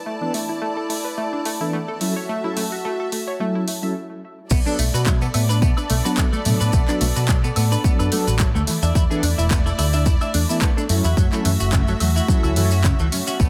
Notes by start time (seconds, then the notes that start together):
Already playing: E4 D5 A5
0.06 A3
0.21 E3 B3 D4 A4
0.34 A3, open hi-hat
0.49 E4
0.62 A3
0.77 A4
0.90 A3, open hi-hat
1.05 B4
1.18 A3
1.33 D4
1.45 A3, open hi-hat
1.60 E3 B3 D4 E4 A4
1.73 A3
1.88 A4
2.00 F#3 A3 C#4 E4 F#4 A4 E5, open hi-hat
2.16 C#5
2.29 A3
2.44 F#3 C#4 E4 A4
2.57 A3, open hi-hat
2.72 F#4
2.85 A3
3.00 A4
3.12 A3, open hi-hat
3.28 C#5
3.39 F#3 A3 C#4 E4 A4
3.55 E4
3.68 A3, open hi-hat
3.82 F#3 C#4 E4 A4 E5
4.50 B1 A3 B3 A4 D5, kick, crash, tambourine, maracas
4.65 F#3 B3 D4 A4, tambourine, maracas
4.79 B1 A3, open hi-hat, tambourine
4.94 B2 F#4 B4, tambourine, maracas
5.06 F#3 A3, kick, clap, tambourine, maracas
5.21 B3 A4, tambourine, maracas
5.34 A2 A3 B3, open hi-hat, tambourine, high woodblock
5.49 D4 B4, tambourine, maracas
5.62 B2 A3 B3, kick, tambourine, maracas
5.77 D4 B4, tambourine, high woodblock, maracas
5.90 B1 A3, open hi-hat, tambourine
6.05 F#3 B3 D4 F#4 A4 B4, tambourine, maracas
6.17 F#3 A3, kick, clap, tambourine, maracas
6.33 A3 A4, maracas
6.45 A2 B2 F#3 A3 B3 D4 A4, open hi-hat, tambourine
6.60 A2 D4 B4, tambourine, maracas
6.73 B1 A3 B3, kick, tambourine, maracas
6.88 F#3 B3 D4 A4, clap, tambourine, maracas
7.01 B1 A3, open hi-hat, tambourine
7.16 B2 F#4 B4, tambourine, maracas
7.28 F#3 A3, kick, clap, tambourine, maracas
7.44 B3 A4, tambourine, maracas
7.56 A2 A3 B3, open hi-hat, tambourine, high woodblock
7.72 D4 B4, tambourine, maracas
7.84 F#3 A3 B3 D4 A4, kick, tambourine, maracas
7.99 F#2 D4 B4, tambourine, high woodblock, maracas
8.12 F#3 A3 B3 D4 A4, open hi-hat, tambourine
8.27 A1 F#4 B4, tambourine, maracas
8.39 F#3 A3, kick, clap, tambourine, maracas
8.55 D2 A3 A4, maracas
8.67 E3 A3 E4 D5, muted picked electric bass stroke, open hi-hat, tambourine
8.83 E2 D4 E5, tambourine, maracas
8.95 E2 A3 E4, kick, tambourine, maracas
9.10 E3 B3 D4 G#4 A4, tambourine, maracas
9.23 E2 A3 D4, open hi-hat, tambourine
9.38 E1 E4 E5, tambourine, maracas
9.51 A3 B3, kick, clap, tambourine, maracas
9.66 E4 A4, tambourine, maracas
9.78 D2 A3 E4, open hi-hat, tambourine, high woodblock
9.93 D4 E5, tambourine, maracas
10.06 E1 A3 E4, kick, tambourine, maracas
10.21 D4 E5, tambourine, high woodblock, maracas
10.34 E2 A3 D4, open hi-hat, tambourine
10.49 E3 B3 D4 E4 A4 E5, tambourine, maracas
10.62 A3 B3, kick, clap, tambourine, maracas
10.77 D4 A4, maracas
10.89 F#2 F#3 A3 C#4 E4 F#4 A4 E5, open hi-hat, tambourine
11.04 E2 E4 F#4, tambourine, maracas
11.17 F#2 F#3 A3, kick, tambourine, maracas
11.32 F#3 A3 C#4 E4 A4, clap, tambourine, maracas
11.45 F#2 E3 A3, open hi-hat, tambourine
11.60 F#1 F#4, tambourine, maracas
11.73 C#3 A3, kick, clap, tambourine, maracas
11.87 F#3 A4, tambourine, maracas
12.00 E2 F#3 A3, open hi-hat, tambourine, high woodblock
12.16 E4 F#4, tambourine, maracas
12.28 F#3 A3 C#4 E4 A4, kick, tambourine, maracas
12.43 C#2 E4 F#4, tambourine, high woodblock, maracas
12.56 F#2 E3 F#3 A3 C#4 E4 A4, open hi-hat, tambourine
12.71 C#4 F#4, tambourine, maracas
12.84 C#3 C#5, kick, clap, tambourine, maracas
12.99 C#2 E3 A3, maracas
13.12 F#2 C#4, open hi-hat, tambourine
13.27 C#4 F#4, tambourine, maracas
13.40 B1 A3 B3 A4 D5, kick, tambourine, maracas